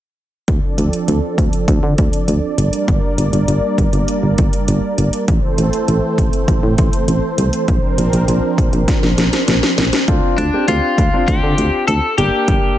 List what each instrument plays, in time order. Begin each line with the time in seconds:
0.48 fm bass D2, analog synth pad F3 C4 D4 A4 D5, kick, closed hi-hat
0.78 fm bass D2, closed hi-hat
0.93 closed hi-hat
1.08 fm bass D2, closed hi-hat
1.38 fm bass D2, kick, closed hi-hat
1.53 closed hi-hat
1.68 fm bass D2, kick, closed hi-hat
1.83 fm bass D3
1.98 fm bass D2, kick, closed hi-hat
2.13 closed hi-hat
2.28 fm bass D2, closed hi-hat
2.58 fm bass G1, analog synth pad G3 A#3 A#4, closed hi-hat
2.73 closed hi-hat
2.88 fm bass G1, kick, closed hi-hat
3.18 fm bass G1, closed hi-hat
3.33 fm bass G1, closed hi-hat
3.48 fm bass G1, closed hi-hat
3.78 fm bass G1, kick, closed hi-hat
3.93 fm bass G1, closed hi-hat
4.08 closed hi-hat
4.23 fm bass G1
4.38 fm bass G1, kick, closed hi-hat
4.53 closed hi-hat
4.68 fm bass G1, closed hi-hat
4.98 fm bass G1, closed hi-hat
5.13 closed hi-hat
5.28 fm bass A1, analog synth pad E3 A3 C4 A4 C5, kick, closed hi-hat
5.58 fm bass A1, closed hi-hat
5.73 closed hi-hat
5.88 fm bass A1, closed hi-hat
6.18 fm bass A1, kick, closed hi-hat
6.33 closed hi-hat
6.48 fm bass A1, kick, closed hi-hat
6.63 fm bass A2
6.78 fm bass A1, kick, closed hi-hat
6.93 closed hi-hat
7.08 fm bass A1, closed hi-hat
7.38 fm bass C2, closed hi-hat
7.53 closed hi-hat
7.68 fm bass A#1, analog synth pad F3 C4 D4 A#4, kick, closed hi-hat
7.98 fm bass A#1, closed hi-hat
8.13 fm bass A#1, closed hi-hat
8.28 fm bass A#1, closed hi-hat
8.58 fm bass A#1, kick, closed hi-hat
8.73 fm bass A#1, closed hi-hat
8.88 kick, snare, closed hi-hat
9.03 fm bass A#1, snare
9.18 fm bass A#1, snare, closed hi-hat
9.33 snare, closed hi-hat
9.48 fm bass A#1, snare, closed hi-hat
9.63 snare
9.78 fm bass A#1, snare, closed hi-hat
9.93 snare, closed hi-hat
10.08 fm bass D2, grand piano C4 D4 F4, kick, closed hi-hat
10.38 fm bass D2, clean electric guitar D4, closed hi-hat
10.53 grand piano C4 D4 G4
10.68 fm bass D2, clean electric guitar F4, closed hi-hat
10.98 fm bass D2, kick, closed hi-hat
11.13 grand piano C4 D4 F4
11.28 fm bass D2, clean electric guitar G4, kick, closed hi-hat
11.43 fm bass D3
11.58 fm bass D2, closed hi-hat
11.88 fm bass D2, clean electric guitar A4, closed hi-hat
12.18 fm bass G1, grand piano A#3 D4 G4, clean electric guitar G4, closed hi-hat
12.48 fm bass G1, kick, closed hi-hat